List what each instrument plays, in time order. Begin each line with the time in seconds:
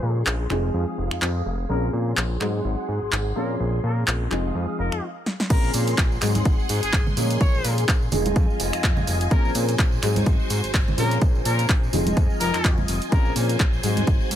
Already playing: grand piano F3 G#3 A#3 C#4 G#4, string machine G#4 C6, trumpet section C#5
0.03 analog synth bass A#2
0.26 analog synth bass A#1, clap
0.49 analog synth bass F1, grand piano F3 G#3 C4 D#4 G#4, string machine F5 D#6, finger snap, clap
0.74 analog synth bass F2
0.98 analog synth bass F1
1.11 analog synth bass F2, finger snap
1.22 analog synth bass F2, clap
1.45 analog synth bass F1
1.69 analog synth bass A#1, grand piano F3 A#3 C4 C#4 G#4, trumpet section A#4, string machine C6
1.93 analog synth bass A#2
2.17 analog synth bass A#1, clap
2.40 analog synth bass G#2, grand piano F#3 G#3 C4 D#4 G#4, string machine G#4 F#5 C6, finger snap, clap
2.64 analog synth bass G#1
2.88 analog synth bass G#2
3.02 analog synth bass G#1
3.12 analog synth bass G#1, clap
3.35 analog synth bass A#2, grand piano F3 A#3 C4 C#4 G#4, trumpet section A#4
3.60 analog synth bass A#1
3.84 analog synth bass A#2, trumpet section A#4
4.07 analog synth bass A#1, clap
4.30 analog synth bass F1, grand piano F3 G#3 C4 D#4 G#4, string machine F5 D#6, finger snap, clap
4.55 analog synth bass F2
4.79 analog synth bass F1, trumpet section A#4
4.92 analog synth bass F2, finger snap
5.26 snare
5.40 snare
5.49 analog synth bass A#1, grand piano F3 A#3 C4 C#4 G#4, string machine G#4 C6, trumpet section A#4, kick, closed hi-hat, crash, tambourine
5.64 tambourine
5.73 analog synth bass A#2, open hi-hat, tambourine
5.87 closed hi-hat, tambourine
5.98 analog synth bass A#1, kick, clap, closed hi-hat, tambourine
6.12 tambourine
6.21 analog synth bass G#2, grand piano F#3 G#3 C4 D#4 G#4, string machine F#5 C6, finger snap, clap, open hi-hat, tambourine
6.35 closed hi-hat, tambourine, high conga
6.45 analog synth bass G#1, kick, closed hi-hat, tambourine
6.59 tambourine
6.69 analog synth bass G#2, open hi-hat, tambourine
6.83 analog synth bass G#1, trumpet section G#4, closed hi-hat, tambourine
6.93 analog synth bass G#1, kick, clap, closed hi-hat
7.07 tambourine, high conga, low conga
7.16 analog synth bass A#2, grand piano F3 G#3 A#3 C#4 G#4, open hi-hat, tambourine
7.30 closed hi-hat, tambourine
7.41 analog synth bass A#1, trumpet section C#5, kick, closed hi-hat, tambourine
7.55 tambourine
7.64 analog synth bass A#2, open hi-hat, tambourine
7.78 closed hi-hat, tambourine
7.88 analog synth bass A#1, kick, clap, closed hi-hat, tambourine
8.02 tambourine
8.12 analog synth bass F1, grand piano F3 G#3 C4 D#4 G#4, string machine F4 D#5 G#5, open hi-hat, tambourine, low conga
8.26 closed hi-hat, tambourine, high conga
8.36 analog synth bass F2, kick, closed hi-hat, tambourine
8.50 tambourine
8.60 analog synth bass F1, open hi-hat, tambourine
8.73 analog synth bass F2, finger snap, closed hi-hat, tambourine
8.84 analog synth bass F2, kick, clap, closed hi-hat
8.97 tambourine, high conga, low conga
9.07 analog synth bass F1, open hi-hat, tambourine
9.21 closed hi-hat, tambourine
9.30 analog synth bass A#1, grand piano F3 A#3 C4 C#4 G#4, trumpet section A#4, string machine C5, kick, closed hi-hat, tambourine
9.45 tambourine
9.55 analog synth bass A#2, open hi-hat, tambourine
9.68 closed hi-hat, tambourine
9.78 analog synth bass A#1, kick, clap, closed hi-hat, tambourine
9.92 tambourine
10.02 analog synth bass G#2, grand piano F#3 G#3 C4 D#4 G#4, string machine F#4, finger snap, clap, open hi-hat, tambourine
10.16 closed hi-hat, tambourine, high conga
10.26 analog synth bass G#1, kick, closed hi-hat, tambourine
10.40 tambourine
10.50 analog synth bass G#2, open hi-hat, tambourine
10.64 analog synth bass G#1, closed hi-hat, tambourine
10.74 analog synth bass G#1, kick, clap, closed hi-hat
10.88 tambourine, high conga, low conga
10.97 analog synth bass A#2, grand piano F3 A#3 C4 C#4 G#4, trumpet section A#4, string machine G#5, open hi-hat, tambourine
11.11 closed hi-hat, tambourine
11.22 analog synth bass A#1, kick, closed hi-hat, tambourine
11.35 tambourine
11.45 analog synth bass A#2, trumpet section A#4, open hi-hat, tambourine
11.59 closed hi-hat, tambourine
11.69 analog synth bass A#1, kick, clap, closed hi-hat
11.83 tambourine
11.92 analog synth bass F1, grand piano F3 G#3 C4 D#4 G#4, string machine F4 D#5, open hi-hat, tambourine, low conga
12.07 closed hi-hat, tambourine, high conga
12.17 analog synth bass F2, kick, closed hi-hat, tambourine
12.30 tambourine
12.40 analog synth bass F1, trumpet section A#4, open hi-hat, tambourine
12.54 analog synth bass F2, finger snap, clap, closed hi-hat, tambourine
12.64 analog synth bass F2, kick, clap, closed hi-hat, tambourine
12.78 tambourine, high conga, low conga
12.88 analog synth bass F1, open hi-hat, tambourine
13.02 closed hi-hat, tambourine
13.12 analog synth bass A#1, grand piano F3 A#3 C4 C#4 G#4, trumpet section A#4, string machine C5, kick, closed hi-hat, tambourine
13.25 tambourine
13.36 analog synth bass A#2, open hi-hat, tambourine
13.49 closed hi-hat, tambourine
13.59 analog synth bass A#1, kick, clap, closed hi-hat, tambourine
13.73 tambourine
13.83 analog synth bass G#2, grand piano F#3 G#3 C4 D#4 G#4, string machine F#4, open hi-hat, tambourine
13.97 closed hi-hat, tambourine, high conga
14.07 analog synth bass G#1, kick, closed hi-hat, tambourine
14.21 tambourine
14.31 analog synth bass G#2, open hi-hat, tambourine